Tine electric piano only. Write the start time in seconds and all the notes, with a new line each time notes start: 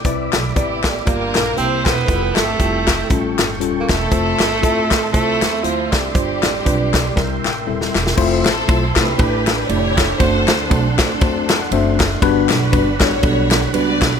0.05 C3 C4 E4 B4 D5
0.56 C4 E4 B4 D5
1.05 G2 A#3 F4 G4 D5
1.57 C3 A#3 E4 G4 C5
2.08 G3 E4 F4 A4
2.59 G3 E4 F4 G4
3.09 A2 G3 C#4 F4 A4
3.60 G3 C#4 F4 A4
4.11 A3 E4 F4 C5
4.62 A3 E4 F4 A4
5.13 A3 E4 F4 C5
5.63 A3 E4 F4 C5
6.14 G2 G3 D4 F4 C5
6.65 G3 D4 F4 B4
7.16 C3 G3 C4 E4 A#4
7.44 G5
7.67 G3 C4 E4 A4 E5
8.17 A3 C4 E4 F4 C5
8.68 A3 C4 E4 F4 C5
8.96 A3 C4 E4 F4 A4
9.18 A2 A3 D4 E4 G4 B4
9.69 A3 D4 E4 G4 D5
10.20 A3 C4 D4 F#4 C5
10.70 A3 C4 D4 F#4 C5
10.98 A3 C4 D4 F#4 C5
11.21 A3 C4 D4 F#4 C5
11.49 A5
11.61 F#5
11.73 A3 C4 D4 F#4 C5 E5
12.22 G2 G3 B3 D4 F#4 B4
12.72 G3 B3 D4 F#4 B4
13.00 G3 B3 D4 F#4 C#5
13.22 G3 B3 D4 F#4 A4
13.73 G3 B3 D4 F#4 B4